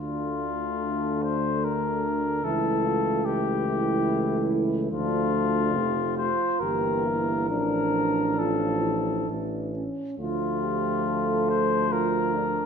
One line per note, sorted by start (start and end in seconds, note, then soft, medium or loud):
0.00 2.40 D2 soft
0.00 2.44 D3 soft
0.00 2.40 A3 soft
0.00 2.39 D4 soft
0.00 1.25 F4 soft
1.23 1.66 C5 soft
1.64 2.46 A#4 soft
2.43 4.88 C#2 soft
2.43 3.24 E3 soft
2.43 3.25 A3 soft
2.43 2.84 E4 soft
2.43 3.27 A4 medium
2.84 3.26 F4 soft
3.25 4.88 E3 soft
3.25 4.89 A3 soft
3.25 3.66 E4 soft
3.25 4.50 G4 soft
3.67 4.89 E4 soft
4.91 5.77 D2 soft
4.91 6.29 F3 soft
4.91 6.30 A3 soft
4.91 5.73 D4 soft
4.91 6.13 F4 medium
5.75 6.33 F1 soft
5.75 6.18 G4 soft
6.17 6.61 F4 soft
6.17 6.61 C5 soft
6.60 7.50 G1 soft
6.60 7.51 E3 soft
6.60 7.51 A#3 soft
6.60 7.05 G4 soft
6.60 7.48 A#4 soft
7.05 7.49 E4 soft
7.48 9.28 A1 soft
7.48 8.38 F3 soft
7.48 9.74 D4 soft
7.48 8.38 D4 soft
7.48 8.40 A#4 medium
8.39 9.30 F3 soft
8.39 8.84 F4 soft
8.39 9.29 A4 soft
8.83 9.30 E4 soft
9.28 9.85 A1 soft
9.28 9.86 E3 soft
9.28 9.75 D4 soft
9.74 10.18 C#4 soft
10.18 12.66 D2 soft
10.18 12.66 F3 soft
10.18 12.66 A3 soft
10.18 11.51 F4 soft
10.18 10.60 F4 soft
10.63 11.05 G4 soft
11.06 11.92 A4 soft
11.49 11.94 C5 medium
11.91 12.34 F4 soft
11.91 12.66 A#4 soft
12.34 12.66 D4 soft